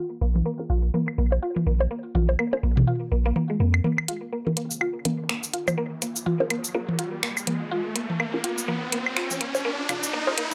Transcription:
0.21 A#1 A#3
0.35 high tom
0.46 A#3
0.59 C#4 F4 G#4 A#4
0.70 A#1 F4
0.94 A#3, high tom
1.08 high woodblock
1.18 A#1 A#3
1.32 high bongo
1.42 F4
1.56 high tom
1.67 A#1 A#3
1.80 high bongo
1.91 A#3
2.15 A#1 F4, high tom
2.29 high bongo
2.39 A#3, high woodblock
2.53 C#4 F4 G#4 A#4, high bongo
2.63 A#1 A#3
2.77 mid tom, high tom
2.87 F4
3.12 A#1 A#3
3.26 A#3
3.36 A#3, high tom
3.50 G#3
3.60 F2 A#3
3.74 high woodblock
3.84 A#3, high tom, riser
3.98 high woodblock
4.08 F4, closed hi-hat
4.33 A#3
4.47 C#4 F4 G#4 A#4, high tom
4.57 A#3, closed hi-hat
4.71 shaker
4.81 F4, high woodblock
5.05 A#3 C#4 F4 G#4 A#4, closed hi-hat, high tom
5.29 A#3, finger snap
5.43 shaker
5.53 F4, closed hi-hat
5.68 high tom, high bongo, high woodblock, shaker
5.78 A#3
6.02 A#3, closed hi-hat, shaker
6.16 shaker
6.26 F4, high tom
6.40 C#4 F4 G#4 A#4, high bongo
6.50 A#3, closed hi-hat, high woodblock
6.64 shaker
6.74 A#3 C#4 F4 G#4 A#4
6.89 high tom
6.99 F4, closed hi-hat
7.23 A#3, finger snap
7.37 high woodblock, shaker
7.47 A#3, closed hi-hat, high tom
7.71 F4
7.95 A#3, closed hi-hat
8.10 high tom
8.20 A#3, high woodblock
8.34 C#4 F4 G#4 A#4
8.44 F4, closed hi-hat
8.58 shaker
8.68 A#3, high tom
8.92 A#3, closed hi-hat
9.06 high woodblock
9.16 F4, finger snap
9.31 high tom, shaker
9.41 A#3, closed hi-hat
9.55 high bongo, shaker
9.65 A#3
9.89 F4, closed hi-hat, mid tom, high tom, high woodblock, shaker
10.03 shaker
10.13 A#3
10.27 C#4 F4 G#4 A#4, high bongo
10.38 A#3, closed hi-hat

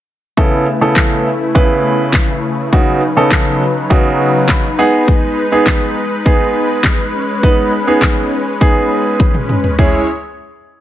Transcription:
0.37 C#3 A3 B3 E4 A4 B4, kick
0.81 C#3 B3 E4 A4
0.96 kick, snare, clap
1.55 C#3 B3 E4 B4, kick
2.13 kick, snare, clap
2.73 C#3 F#3 B3 D#4 F#4, kick
3.17 C#3 B3 D#4 A4
3.31 kick, snare, clap
3.90 C#3 B3 D#4 F#4, kick
4.48 B5, kick, snare, clap
4.78 G#3 B3 D#4 G#4 F#5
5.08 kick
5.52 B3 D#4 G#4
5.66 kick, snare, clap
6.25 B3 D#4 G#4, kick
6.83 kick, snare, clap
7.14 C#4
7.43 B3 D#4 B4, kick
7.87 B3 D#4 G#4
8.01 kick, snare, clap
8.61 B3 D#4 G#4, kick
9.20 kick, high tom
9.35 mid tom
9.49 mid tom
9.64 floor tom
9.78 G#3 C#4 E4 G#4 C#5, kick, floor tom

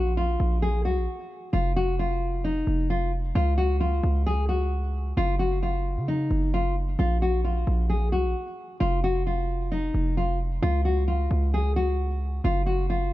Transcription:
Already playing: A#1 F#4
0.17 F4
0.40 A#1
0.62 G#4
0.85 C2 F#4
0.97 A#1
1.53 F1 F4
1.76 F#4
1.99 F4
2.44 D#4
2.67 F1
2.90 F4
3.35 C#2 F4
3.58 F#4
3.80 F4
4.03 C#2
4.27 G#4
4.49 F#4
5.17 F#1 F4
5.39 F#4
5.63 F4
5.97 C#3
6.08 D#4
6.31 F#1
6.54 F4
6.99 A#1 F4
7.22 F#4
7.45 F4
7.67 A#1
7.90 G#4
8.12 C2 F#4
8.25 A#1
8.80 F1 F4
9.04 F#4
9.27 F4
9.72 D#4
9.94 F1
10.17 F4
10.63 C#2 F4
10.85 F#4
11.08 F4
11.31 C#2
11.54 G#4
11.76 F#4
12.44 F#1 F4
12.66 F#4
12.90 F4

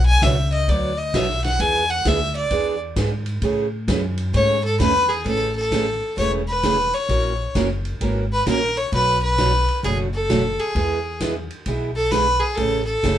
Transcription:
Already playing: B1
0.06 G#5
0.22 C#2 B2 F#3 B3 D4 F#4 C#5 E5, kick, snare, hi-hat pedal, ride
0.52 D#5, ride
0.68 D2 B2 F#3 B3 D4 F#4 C#5 D5, kick, ride
0.98 D#5
1.14 B1 B2 F#3 B3 D4 F#4 C#5 E5, kick, snare, hi-hat pedal, ride
1.29 snare
1.44 F#5, snare, ride
1.60 E2 E3 B3 D4 G#4 G#5, kick, ride
1.90 F#5
2.05 D2 E3 B3 D4 G#4 E5, kick, snare, hi-hat pedal, ride
2.35 D5, ride
2.51 E2 E3 B3 D4 G#4, kick, ride
2.96 G#2 E3 B3 D4 G#4, kick, snare, hi-hat pedal, ride
3.26 ride
3.42 A2 C#3 E3 A3 C#4 G#4, kick, ride
3.88 F#2 C#3 E3 A3 C#4 G#4, kick, snare, hi-hat pedal, ride
4.18 ride
4.34 G#2 C#3 E3 A3 C#4 G#4 C#5, kick, ride
4.64 A4
4.79 E2 C#3 E3 A3 C#4 G#4 B4, kick, snare, hi-hat pedal, ride
5.09 G#4, ride
5.25 A1 C#3 E3 A3 C#4 G#4 A4, kick, ride
5.56 A4
5.71 C#3 E3 A3 C#4 G#4, kick, snare, hi-hat pedal, ride
6.17 E1 C#3 E3 A3 C#4 G#4 C#5, kick, ride
6.48 B4
6.63 C#3 E3 A3 C#4 G#4, kick, snare, hi-hat pedal, ride
6.93 C#5, ride
7.09 A#1 E3 A#3 C#4 F#4 A#4, kick, ride
7.55 F#1 E3 A#3 C#4 F#4 A#4, kick, snare, hi-hat pedal, ride
7.85 ride
8.01 G#1 E3 A#3 C#4 F#4 A#4, kick, ride
8.33 B4
8.47 A#1 E3 A#3 C#4 F#4 A#4, kick, snare, hi-hat pedal, ride
8.77 C#5, ride
8.92 B1 B2 F#3 A3 D4 F#4 B4, kick, ride
9.23 B4
9.38 B2 F#3 A3 D4 F#4, kick, snare, hi-hat pedal, ride
9.68 ride
9.83 F#1 B2 F#3 A3 D4 F#4 G#4, kick, ride
10.14 A4
10.29 B2 F#3 A3 D4 F#4, kick, snare, hi-hat pedal, ride
10.59 G#4, ride
10.75 E2 E3 G#3 B3 E4 G#4, kick, ride
11.20 E3 G#3 B3 E4 G#4, kick, snare, hi-hat pedal, ride
11.50 ride
11.66 B1 E3 G#3 B3 E4 G#4, kick, ride
11.96 A4
12.11 E3 G#3 B3 E4 G#4 B4, kick, snare, hi-hat pedal, ride
12.40 G#4
12.55 A1 C#3 E3 A3 C#4 G#4 A4, kick, ride
12.85 A4
13.03 F#1 C#3 E3 A3 C#4 G#4, kick, snare, hi-hat pedal, ride

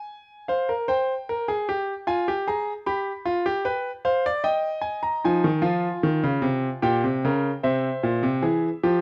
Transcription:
Already playing: G#5
0.48 C5 F5
0.69 A#4
0.88 C5 G5
1.29 A#4
1.48 G#4
1.69 G4
2.07 F4 G#5
2.28 G4
2.48 G#4 A#5
2.86 G4 B5
3.25 F4
3.46 G4
3.65 B4 G5
4.05 C5 F5
4.26 D5
4.44 D#5 G5
4.81 G#5
5.03 A#5
5.24 F3 D#4 G#5
5.44 D#3
5.62 F3 F4
6.03 D#3
6.23 C#3
6.42 C3
6.82 A#2 G4 G5
7.04 C3
7.24 C#3 A#4
7.63 C3 C5 E5
8.03 A#2
8.23 C3
8.42 E3 G#4
8.83 F3 G4

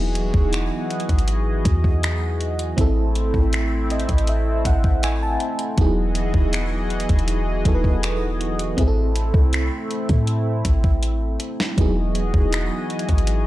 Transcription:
Already playing: E1 E3 F#3 B3 D#4 E4 F#4 G#4 D#5
0.15 closed hi-hat
0.34 E1, kick
0.53 finger snap, closed hi-hat
0.90 closed hi-hat
1.00 closed hi-hat
1.09 G#1, kick, closed hi-hat
1.19 closed hi-hat
1.28 closed hi-hat
1.65 E2, kick, closed hi-hat
1.84 kick
2.03 finger snap, closed hi-hat
2.41 closed hi-hat
2.59 closed hi-hat
2.77 A1 A3 C4 E4, kick, closed hi-hat
2.81 A4
3.15 closed hi-hat
3.34 A1, kick
3.53 finger snap, closed hi-hat
3.90 D#5, closed hi-hat
4.00 closed hi-hat
4.09 A1, kick, closed hi-hat
4.18 closed hi-hat
4.27 E5, closed hi-hat
4.65 A1 F#5, kick, closed hi-hat
4.84 kick
5.03 G#5, finger snap, closed hi-hat
5.23 A5
5.40 closed hi-hat
5.59 closed hi-hat
5.77 E1 E3 F#3 B3 D#4 E4 F#4 G#4 D#5, kick, closed hi-hat
5.81 G#4
6.15 closed hi-hat
6.34 E1, kick
6.53 finger snap, closed hi-hat
6.90 closed hi-hat
7.00 closed hi-hat
7.09 E1, kick, closed hi-hat
7.19 closed hi-hat
7.28 closed hi-hat
7.65 E1 F#3 B3 D#4 E4 A4, kick, closed hi-hat
7.75 B4
7.84 kick
8.03 finger snap, closed hi-hat
8.41 closed hi-hat
8.59 closed hi-hat
8.77 A1 A3 C4 E4, kick, closed hi-hat
8.81 G#4
8.88 A4
9.16 closed hi-hat
9.34 C2, kick
9.53 finger snap, closed hi-hat
9.91 closed hi-hat
10.09 A2, kick, closed hi-hat
10.27 closed hi-hat
10.65 A1, kick, closed hi-hat
10.84 kick
11.03 closed hi-hat
11.40 closed hi-hat
11.60 snare
11.77 E1 E3 F#3 B3 D#4 E4 F#4 G#4 D#5, kick, closed hi-hat
11.81 G#4
12.15 closed hi-hat
12.34 E1, kick
12.53 finger snap, closed hi-hat
12.90 closed hi-hat
12.99 closed hi-hat
13.09 G#1, kick, closed hi-hat
13.18 closed hi-hat
13.27 closed hi-hat

